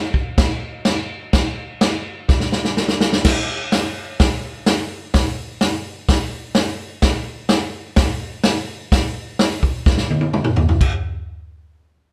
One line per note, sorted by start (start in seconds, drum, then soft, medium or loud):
0.14 kick medium
0.38 kick loud
0.38 snare loud
0.38 crash medium
0.85 snare loud
0.85 crash medium
1.33 kick loud
1.33 snare loud
1.33 crash medium
1.81 snare loud
1.81 crash medium
2.28 kick loud
2.28 snare medium
2.40 snare medium
2.52 snare medium
2.65 snare medium
2.77 snare medium
2.88 snare medium
3.00 snare loud
3.13 snare loud
3.25 kick loud
3.25 snare loud
3.25 crash loud
3.72 snare loud
3.72 open hi-hat medium
4.20 kick loud
4.20 snare loud
4.20 open hi-hat medium
4.66 snare loud
4.66 open hi-hat medium
5.14 kick loud
5.14 snare loud
5.14 open hi-hat medium
5.61 snare loud
5.61 open hi-hat medium
6.09 kick loud
6.09 snare loud
6.09 open hi-hat medium
6.55 snare loud
6.55 open hi-hat medium
7.02 kick loud
7.02 snare loud
7.02 open hi-hat medium
7.49 snare loud
7.49 open hi-hat medium
7.96 kick loud
7.96 snare loud
7.96 open hi-hat medium
8.44 snare loud
8.44 open hi-hat medium
8.92 kick loud
8.92 snare loud
8.92 open hi-hat medium
9.39 snare loud
9.39 open hi-hat medium
9.63 kick medium
9.86 kick loud
9.86 snare medium
9.98 snare medium
10.10 high tom medium
10.21 high tom medium
10.33 mid tom medium
10.44 mid tom medium
10.56 floor tom loud
10.69 floor tom loud
10.81 kick loud
10.81 crash medium